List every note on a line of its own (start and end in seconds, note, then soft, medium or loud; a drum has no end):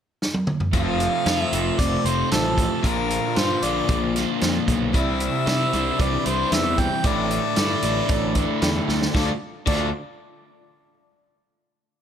0.22 snare medium
0.34 high tom medium
0.47 mid tom medium
0.60 floor tom medium
0.73 1.07 F1 medium
0.73 1.00 F2 medium
0.73 1.00 C3 medium
0.73 1.00 F3 medium
0.73 0.99 A3 medium
0.73 0.99 C4 medium
0.73 0.98 F4 medium
0.73 1.41 F5 loud
0.73 kick loud
0.73 closed hi-hat medium
0.99 1.78 F3 soft
0.99 1.77 A3 soft
0.99 1.78 C4 soft
0.99 1.79 F4 soft
0.99 closed hi-hat medium
1.26 1.43 F2 medium
1.26 2.57 F4 medium
1.26 snare loud
1.26 closed hi-hat medium
1.41 1.81 E5 loud
1.53 1.69 F1 medium
1.53 2.04 C4 medium
1.53 closed hi-hat medium
1.78 1.96 F1 medium
1.78 2.05 F2 medium
1.78 2.05 C3 medium
1.78 2.05 F3 medium
1.78 2.05 A3 medium
1.78 2.04 C4 medium
1.78 2.04 F4 medium
1.78 2.08 D5 medium
1.78 kick loud
1.78 closed hi-hat loud
2.05 2.22 F1 medium
2.05 2.29 F3 soft
2.05 2.30 A3 soft
2.05 2.30 C4 soft
2.05 2.31 F4 medium
2.05 2.31 C5 medium
2.05 closed hi-hat medium
2.31 2.65 A1 medium
2.31 2.84 F3 medium
2.31 2.84 A3 medium
2.31 2.84 C4 medium
2.31 2.83 F4 medium
2.31 2.87 A4 medium
2.31 snare loud
2.31 closed hi-hat medium
2.57 2.84 A3 medium
2.57 kick medium
2.57 closed hi-hat medium
2.84 3.18 A#1 medium
2.84 3.10 A#2 medium
2.84 3.11 D3 medium
2.84 3.10 A#3 medium
2.84 3.09 D4 medium
2.84 3.08 F4 medium
2.84 3.38 A#4 medium
2.84 kick loud
2.84 closed hi-hat medium
3.10 3.88 A#3 soft
3.10 3.89 D4 soft
3.10 3.88 F4 medium
3.10 closed hi-hat medium
3.36 3.54 G2 medium
3.36 4.68 F4 medium
3.36 3.65 C5 medium
3.36 snare loud
3.36 closed hi-hat medium
3.62 3.80 A#1 medium
3.62 4.15 D4 medium
3.62 4.16 D5 medium
3.62 closed hi-hat medium
3.88 4.23 A#1 medium
3.88 4.15 A#2 medium
3.88 4.15 D3 medium
3.88 4.15 A#3 medium
3.88 4.14 D4 medium
3.88 4.13 F4 medium
3.88 kick loud
3.88 closed hi-hat medium
4.14 4.39 A#3 soft
4.14 4.39 D4 medium
4.14 4.40 F4 medium
4.14 snare soft
4.14 closed hi-hat medium
4.39 4.59 F2 medium
4.39 4.93 D3 medium
4.39 4.95 F3 medium
4.39 4.93 A#3 medium
4.39 4.93 D4 medium
4.39 4.93 F4 medium
4.39 snare loud
4.39 closed hi-hat medium
4.68 4.94 B1 medium
4.68 4.94 A#3 medium
4.68 kick medium
4.68 closed hi-hat medium
4.92 5.28 C2 medium
4.92 5.20 C3 medium
4.92 5.20 E3 medium
4.92 5.20 G3 medium
4.92 7.04 C4 medium
4.92 5.19 D4 medium
4.92 5.18 E4 medium
4.92 5.37 E4 medium
4.92 5.37 C5 medium
4.92 5.37 D5 medium
4.92 kick loud
4.92 closed hi-hat medium
4.98 6.02 E5 loud
5.20 5.99 G3 soft
5.20 5.99 D4 soft
5.20 5.99 E4 medium
5.20 closed hi-hat medium
5.46 5.64 C3 medium
5.46 6.78 E4 medium
5.46 5.89 E4 medium
5.46 5.90 C5 medium
5.46 5.89 D5 medium
5.46 snare loud
5.46 closed hi-hat medium
5.73 5.90 C2 medium
5.73 6.25 D4 medium
5.73 closed hi-hat medium
5.99 6.16 C2 loud
5.99 6.26 C3 medium
5.99 6.25 E3 medium
5.99 6.25 G3 medium
5.99 6.25 D4 medium
5.99 6.42 E4 medium
5.99 6.23 E4 medium
5.99 6.42 C5 medium
5.99 6.28 D5 medium
5.99 6.42 D5 medium
5.99 kick loud
5.99 closed hi-hat loud
6.24 6.43 C2 medium
6.24 6.50 G3 soft
6.24 6.50 D4 medium
6.24 6.51 E4 medium
6.24 6.54 C5 medium
6.24 closed hi-hat medium
6.50 6.86 E2 medium
6.50 6.77 E3 medium
6.50 6.78 G3 medium
6.50 6.78 D4 medium
6.50 6.76 E4 medium
6.50 6.94 E4 medium
6.50 6.95 C5 medium
6.50 6.95 D5 medium
6.50 6.81 E5 loud
6.50 snare loud
6.50 closed hi-hat medium
6.78 7.05 G3 medium
6.78 7.03 D4 soft
6.78 7.03 E4 medium
6.78 7.08 G5 loud
6.78 kick medium
6.78 closed hi-hat medium
7.03 7.38 A1 loud
7.03 7.30 A2 medium
7.03 7.31 D3 medium
7.03 7.30 A3 medium
7.03 7.30 D4 medium
7.03 7.29 E4 medium
7.03 7.47 E4 medium
7.03 7.47 A4 medium
7.03 7.47 D5 medium
7.03 8.89 D5 loud
7.03 kick loud
7.03 closed hi-hat medium
7.30 7.83 A3 soft
7.30 7.82 D4 medium
7.30 7.81 E4 medium
7.30 closed hi-hat medium
7.56 7.74 G2 medium
7.56 8.88 E4 medium
7.56 8.00 E4 medium
7.56 8.00 A4 medium
7.56 8.00 D5 medium
7.56 snare loud
7.56 closed hi-hat medium
7.82 8.00 A1 medium
7.82 8.07 A3 soft
7.82 8.08 D4 medium
7.82 closed hi-hat medium
8.08 8.43 A1 medium
8.08 8.35 A2 medium
8.08 8.35 D3 medium
8.08 8.35 A3 loud
8.08 8.35 D4 medium
8.08 8.34 E4 loud
8.08 8.52 E4 medium
8.08 8.52 A4 medium
8.08 8.52 D5 loud
8.08 kick loud
8.08 closed hi-hat medium
8.35 8.60 A3 medium
8.35 8.61 D4 medium
8.35 8.62 E4 medium
8.35 kick medium
8.35 closed hi-hat medium
8.61 8.79 E2 medium
8.61 9.13 D3 medium
8.61 9.13 A3 medium
8.61 9.14 D4 medium
8.61 9.04 E4 medium
8.61 9.15 E4 medium
8.61 9.04 A4 medium
8.61 9.05 D5 medium
8.61 9.11 G5 medium
8.61 snare loud
8.61 closed hi-hat medium
8.88 9.05 D2 medium
8.88 9.13 A3 medium
8.88 snare medium
9.02 snare medium
9.14 9.29 D2 medium
9.14 9.30 D3 medium
9.14 9.30 A3 medium
9.14 9.30 D4 medium
9.14 9.30 F4 medium
9.14 9.31 F4 medium
9.14 9.31 A4 medium
9.14 9.30 A4 medium
9.14 9.30 D5 medium
9.14 kick loud
9.14 snare medium
9.66 9.91 D2 medium
9.66 9.87 D3 medium
9.66 9.88 A3 medium
9.66 9.88 D4 loud
9.66 9.92 F4 medium
9.66 9.88 F4 medium
9.66 9.91 A4 medium
9.66 9.88 A4 medium
9.66 9.91 D5 medium
9.66 kick loud
9.66 crash medium